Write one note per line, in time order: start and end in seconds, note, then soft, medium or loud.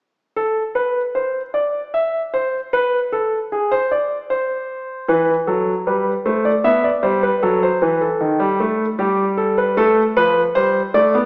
0.36 0.61 A4 medium
0.75 1.00 B4 medium
1.15 1.40 C5 medium
1.54 1.79 D5 medium
1.94 2.19 E5 medium
2.34 2.58 C5 medium
2.73 2.98 B4 medium
3.12 3.37 A4 medium
3.52 3.71 G#4 medium
3.71 3.91 C5 medium
3.91 4.16 D5 medium
4.30 5.06 C5 medium
5.08 5.33 E3 medium
5.08 5.33 B4 medium
5.47 5.72 F#3 medium
5.47 5.72 A4 soft
5.87 6.11 G3 medium
5.87 6.11 B4 soft
6.26 6.50 A3 medium
6.26 6.45 C5 soft
6.45 6.64 D5 medium
6.64 6.89 B3 medium
6.64 6.84 E5 medium
6.84 7.03 D5 soft
7.03 7.27 G3 medium
7.03 7.22 C5 medium
7.23 7.42 B4 medium
7.42 7.67 F#3 medium
7.42 7.61 A4 medium
7.63 7.81 C5 medium
7.82 8.06 E3 medium
7.82 8.00 B4 medium
8.01 8.95 A4 soft
8.21 8.39 D#3 medium
8.40 8.59 G3 medium
8.60 8.84 A3 medium
8.99 9.74 G3 medium
8.99 9.23 G4 medium
9.37 9.56 A4 medium
9.58 9.76 B4 medium
9.77 10.01 A3 medium
9.77 10.01 A4 medium
10.17 10.41 F3 medium
10.17 10.40 B4 medium
10.55 10.79 G3 medium
10.55 10.79 C5 medium
10.94 11.13 A3 medium
10.94 11.18 D5 medium
11.15 11.26 B3 medium